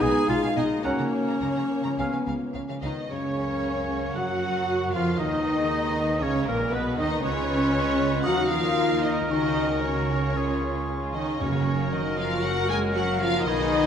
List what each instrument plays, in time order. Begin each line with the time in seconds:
Already playing: harp B2 B3 D#4 G#4, french horn section G#3 D#4, viola section B3
0.01 double bass section B1, cello section B2, clarinet G#4, violin section G#5
0.28 double bass section B1, cello section B2, viola section G#3, clarinet F4, violin section F5 G#5
0.42 cello section B2, violin section G#5
0.56 double bass section B1, cello section B2, clarinet D#4, violin section D#5 G#5
0.67 harp C#3
0.71 harp A#3
0.76 harp F#4
0.80 french horn section A#3, clarinet C#4, harp C#5
0.84 double bass section C#2, cello section C#3, viola section A#3, bassoon C#4, french horn section F#4, violin section C#5 A#5, oboe F#5, flute A#5
0.99 cello section C#3, violin section A#5
1.28 cello section C#3, violin section A#5
1.40 double bass section C#2, cello section C#3, french horn section F#3, violin section A#5
1.56 cello section C#3, violin section A#5
1.69 french horn section A#3
1.80 harp C#3 G#3, cello section C#3, violin section A#5
1.90 harp F4
1.94 french horn section B3, harp C#5
1.98 double bass section C#2, cello section C#3, bassoon C#4, violin section F5, oboe F5, flute G#5
2.12 cello section C#3, violin section F5
2.26 double bass section C#2, cello section C#3, violin section F5
2.54 double bass section C#2, cello section C#3, french horn section C#4, violin section F5
2.69 cello section C#3, violin section F5
2.82 double bass section C#2, cello section C#3 D#3, french horn section B3 D#4, viola section D#4, violin section D#5 F5
3.10 double bass section C#2, harp F#2, cello section C#3, bassoon C#3, violin section C#4 C#5, clarinet C#4, french horn section C#4, viola section C#4, oboe C#5, flute C#5
3.23 harp A#3
3.38 harp C#5
3.50 harp A#4
3.64 harp F#5
3.77 harp C#6
3.90 harp F#5
4.04 harp C#5
4.15 double bass section F#2, harp C#3, cello section F#3, bassoon F#3, french horn section F#4, viola section F#4, violin section F#4 F#5, clarinet F#4, oboe F#5, flute F#5
4.30 harp A#3
4.43 harp C#5
4.56 harp A#4
4.69 harp F#5
4.82 harp C#6
4.91 double bass section F2, cello section F3, bassoon F3, violin section F4 F5, french horn section F4, viola section F4, clarinet F4, flute F5, oboe F5, harp F#5
5.06 harp C#5
5.18 double bass section D#2, harp B2, cello section D#3, bassoon D#3, violin section D#4 D#5, clarinet D#4, viola section D#4, french horn section D#4, flute D#5, oboe D#5
5.31 harp G#3
5.44 harp B4
5.58 harp G#4
5.82 harp B5
5.95 harp D#5
6.07 harp B4
6.20 double bass section C#2, harp B2, cello section C#3, bassoon C#3, violin section C#4 C#5, clarinet C#4, french horn section C#4, viola section C#4, flute C#5, oboe C#5
6.34 harp G#3
6.45 double bass section A#1, cello section A#2, bassoon A#2, french horn section A#3, violin section A#3 A#4, clarinet A#3, viola section A#3, flute A#4, oboe A#4, harp B4
6.59 harp G#4
6.71 double bass section B1, cello section B2, bassoon B2, violin section B3 B4, french horn section B3, viola section B3, clarinet B3, flute B4, oboe B4, harp D#5
6.85 harp B5
6.96 double bass section D#2, cello section D#3, bassoon D#3, violin section D#4 D#5, french horn section D#4, viola section D#4, clarinet D#4, flute D#5, harp D#5, oboe D#5
7.10 harp B4
7.21 double bass section C#2, harp C#3, cello section C#3, bassoon G#3, violin section B3 C#4 C#5, french horn section C#4, viola section C#4, clarinet F4, oboe B4, flute C#6
7.33 violin section G#3 C#4, harp C#4
7.48 violin section B3 C#4, harp B4
7.61 violin section G#3 C#4, harp C#5
7.73 violin section B3 C#4, harp F5
7.86 violin section G#3 C#4, harp B5
7.98 violin section B3 C#4
8.12 violin section G#3 C#4, harp B4
8.24 double bass section D#2, harp D#3, cello section F#3, violin section A#3 D#4 F#5, bassoon A#3, clarinet D#4, viola section F#4, french horn section F#4, oboe A#4, flute D#6
8.38 violin section A#3 D#4, harp D#4
8.51 cello section F3, violin section A#3 D#4 F5, french horn section F4, viola section F4, harp A#4
8.64 violin section A#3 D#4, harp D#5
8.77 violin section A#3 D#4, harp A#5
8.90 violin section A#3 D#4, harp D#5
9.02 cello section D#3, violin section A#3 D#4 D#5, french horn section D#4, viola section D#4, harp A#5
9.15 violin section A#3 D#4, harp A#4
9.28 double bass section C#2, harp C#3, cello section D#3, violin section C#4 D#5, bassoon C#4, viola section D#4, french horn section D#4, clarinet F#4, flute C#6
9.44 violin section A#3 F#4
9.55 violin section C#4, harp A#4
9.68 violin section A#3 F#4, harp C#5
9.82 cello section C#3, french horn section C#4, violin section C#4 C#5, viola section C#4, harp F#5
9.95 violin section A#3 F#4, harp A#5
10.08 violin section C#4, harp F#5
10.21 violin section A#3 F#4, harp A#4
10.34 harp C#3, violin section C#4, clarinet F4, oboe G#4
10.47 violin section G#3 F4, harp C#4
10.61 violin section C#4, harp G#4
10.74 violin section G#3 F4, harp C#5
10.89 violin section C#4, harp F5
11.01 violin section G#3 F4, harp G#5
11.13 cello section D#3, violin section C#4 D#5, french horn section D#4, viola section D#4, harp F5
11.28 violin section G#3 F4, harp G#4
11.40 double bass section F#1, harp F#2, timpani F#2, cello section C#3, french horn section C#4, violin section C#4 C#5, viola section C#4, clarinet F#4, oboe A#4
11.54 violin section A#3 F#4, harp C#4
11.67 violin section C#4, harp A#4
11.78 violin section A#3 F#4, harp C#5
11.91 cello section D#3, violin section C#4 D#5, french horn section D#4, viola section D#4, harp F#5
12.05 violin section A#3 F#4, harp A#5
12.16 cello section F3, violin section C#4 F5, french horn section F4, viola section F4, harp F#5
12.31 violin section A#3 F#4, harp A#4
12.41 harp C#3, cello section F#3, violin section C#4 F#5, viola section F#4, french horn section F#4
12.56 violin section A#3 F#4, harp C#4
12.68 cello section G#3, violin section C#4 G#5, viola section G#4, french horn section G#4, harp A#4
12.81 violin section A#3 F#4, harp C#5
12.94 cello section F#3, violin section C#4 F#5, viola section F#4, french horn section F#4, harp F#5
13.08 violin section A#3 F#4, harp A#5
13.19 cello section F3, violin section C#4 F5, viola section F4, french horn section F4, harp F#5
13.32 violin section A#3 F#4, harp A#4
13.44 double bass section B1, harp B2, cello section D#3, bassoon G#3, viola section D#4, clarinet D#4, oboe G#4, violin section D#5, flute B5
13.48 violin section B3, french horn section D#4
13.59 violin section G#3 D#4, harp B3
13.71 harp G#4
13.76 violin section B3